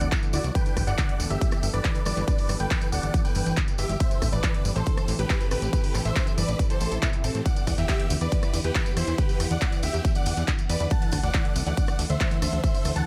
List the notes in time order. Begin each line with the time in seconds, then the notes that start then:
Already playing: D3 A3 A4 F#5
0.01 D2 E3, closed hi-hat, tambourine
0.12 E4, kick, clap, closed hi-hat, tambourine
0.23 E3, closed hi-hat, tambourine
0.33 D2 E4 F#4 D5, open hi-hat, tambourine
0.44 C2 F#3, closed hi-hat, tambourine
0.55 E3 B3 G4 A4 B4 G5, kick, closed hi-hat, tambourine
0.66 D3, closed hi-hat, tambourine
0.77 G1 E3, kick, cross-stick, open hi-hat, tambourine
0.87 G1 E3 D5 F#5, closed hi-hat, tambourine
0.98 D3, kick, clap, closed hi-hat, tambourine
1.09 E3, closed hi-hat
1.20 D1 E3, open hi-hat, tambourine
1.30 G1 D3 G4 E5, closed hi-hat, tambourine
1.41 E3, kick, closed hi-hat, tambourine
1.51 E3, cross-stick, closed hi-hat, tambourine
1.63 G1 D3, open hi-hat, tambourine
1.73 G1 E3 B4 D5, closed hi-hat, tambourine
1.84 E3, kick, clap, closed hi-hat, tambourine
1.95 D3, closed hi-hat, tambourine
2.05 G1 E3 B4 D5, cross-stick, open hi-hat, tambourine
2.17 G1 E3, closed hi-hat, tambourine
2.27 D3 B4 D5, kick, closed hi-hat, tambourine
2.38 E3, open hi-hat, tambourine
2.49 G1 E3, cross-stick, open hi-hat, tambourine
2.59 G1 D3 B4 G5, closed hi-hat, tambourine
2.70 E3, kick, clap, closed hi-hat, tambourine
2.81 E3, closed hi-hat, tambourine
2.92 D1 D3 D5 F#5, open hi-hat, tambourine
3.03 G1 E3, closed hi-hat, tambourine
3.14 E3, kick, closed hi-hat, tambourine
3.25 D3 B4 G5, closed hi-hat, tambourine
3.35 G1 E3, open hi-hat, tambourine
3.46 G1 E3, closed hi-hat, tambourine
3.57 kick, clap, closed hi-hat, tambourine
3.68 E3, closed hi-hat, tambourine
3.78 G1 E3 G4 E5, open hi-hat, tambourine
3.89 G1 D3, closed hi-hat, tambourine
4.00 E3 C4 A4 C5 E5, kick, closed hi-hat, tambourine
4.11 E3, closed hi-hat, tambourine
4.22 A1 D3, kick, cross-stick, open hi-hat, tambourine
4.32 A1 E3 B4 D5, closed hi-hat, tambourine
4.43 E3, kick, clap, closed hi-hat, tambourine
4.54 D3, closed hi-hat
4.65 G1 E3, open hi-hat, tambourine
4.76 A1 E3 A4 C5, closed hi-hat, tambourine
4.86 D3, kick, closed hi-hat, tambourine
4.97 E3, cross-stick, closed hi-hat, tambourine
5.08 A1 E3, open hi-hat, tambourine
5.19 A1 D3 G4 B4, closed hi-hat, tambourine
5.30 E3, kick, clap, closed hi-hat, tambourine
5.40 E3, closed hi-hat, tambourine
5.51 A1 D3 G4 B4, cross-stick, open hi-hat, tambourine
5.62 A1 E3, closed hi-hat, tambourine
5.73 E3 G4 B4, kick, closed hi-hat, tambourine
5.84 D3, open hi-hat, tambourine
5.94 A1 E3, cross-stick, clap, open hi-hat, tambourine
6.05 A1 E3 C5 E5, closed hi-hat, tambourine
6.16 D3, kick, clap, closed hi-hat, tambourine
6.27 E3, closed hi-hat, tambourine
6.38 G1 E3 B4 D5, open hi-hat, tambourine
6.48 A1 D3, closed hi-hat, tambourine
6.59 E3, kick, closed hi-hat, tambourine, swell
6.70 E3 A4 C5, closed hi-hat, tambourine
6.81 A1 E4, open hi-hat, tambourine
6.91 A1 E4, closed hi-hat, tambourine
7.02 B2, kick, clap, closed hi-hat, tambourine
7.13 E3, closed hi-hat, tambourine
7.24 A1 C4 E4 A4, open hi-hat, tambourine
7.35 A2 E3, closed hi-hat
7.45 E3 B3 D5 F#5, kick, closed hi-hat, tambourine
7.56 D3, closed hi-hat, tambourine
7.67 E2 E3, kick, cross-stick, open hi-hat, ride, tambourine
7.78 E2 E3 G4 E5, closed hi-hat, tambourine
7.89 D3, kick, clap, closed hi-hat, tambourine
8.00 E3, closed hi-hat
8.10 D2 E3, open hi-hat, ride, tambourine
8.21 E2 D3 B4 D5, closed hi-hat, tambourine
8.31 E3, kick, closed hi-hat, tambourine
8.43 E3, cross-stick, closed hi-hat, tambourine
8.54 E2 D3, open hi-hat, ride, tambourine
8.63 E2 E3 G4 B4, closed hi-hat, tambourine
8.75 E3, kick, clap, closed hi-hat, tambourine
8.86 D3, closed hi-hat, tambourine
8.97 E2 E3 E4 C5, cross-stick, open hi-hat, ride, tambourine
9.08 E2 E3, closed hi-hat, tambourine
9.18 D3 G4 B4, kick, closed hi-hat, tambourine
9.29 E3, open hi-hat, tambourine
9.40 E2 E3, cross-stick, open hi-hat, ride, tambourine
9.50 E2 D3 D5 F#5, closed hi-hat, tambourine
9.61 E3, kick, clap, closed hi-hat, tambourine
9.72 E3, closed hi-hat, tambourine
9.83 D2 D3 G4 E5, open hi-hat, ride, tambourine
9.94 E2 E3, closed hi-hat, tambourine
10.05 E3, kick, closed hi-hat, tambourine
10.15 D3 D5 F#5, closed hi-hat, tambourine
10.26 E2 E3, open hi-hat, ride, tambourine
10.37 E2 E3, closed hi-hat, tambourine
10.48 D3, kick, clap, closed hi-hat, tambourine
10.58 E3, closed hi-hat, tambourine
10.69 E2 E3 B4 D5, open hi-hat, ride, tambourine
10.80 E2 D3, closed hi-hat, tambourine
10.90 D3 E3 A3 A4 F#5 A5, kick, closed hi-hat, tambourine
11.02 E3, closed hi-hat, tambourine
11.11 D2 D3, kick, cross-stick, open hi-hat, ride, tambourine
11.23 D2 E3 D5 F#5, closed hi-hat, tambourine
11.33 E3, kick, clap, closed hi-hat, tambourine
11.45 D3, closed hi-hat
11.56 C2 E3, open hi-hat, ride, tambourine
11.66 D2 E3 D5 F#5, closed hi-hat, tambourine
11.77 D3, kick, closed hi-hat, tambourine
11.87 E3, cross-stick, closed hi-hat, tambourine
11.99 D2 E3, open hi-hat, ride, tambourine
12.10 D2 D3 C5 E5, closed hi-hat, tambourine
12.20 E3, kick, clap, closed hi-hat, tambourine
12.31 E3, closed hi-hat, tambourine
12.42 D2 D3 C5 E5, cross-stick, open hi-hat, ride, tambourine
12.53 D2 E3, closed hi-hat, tambourine
12.64 E3 C5 E5, kick, closed hi-hat, tambourine
12.74 D3, open hi-hat, tambourine
12.85 D2 E3, cross-stick, open hi-hat, ride, tambourine
12.96 D2 E3 F#5 A5, closed hi-hat, tambourine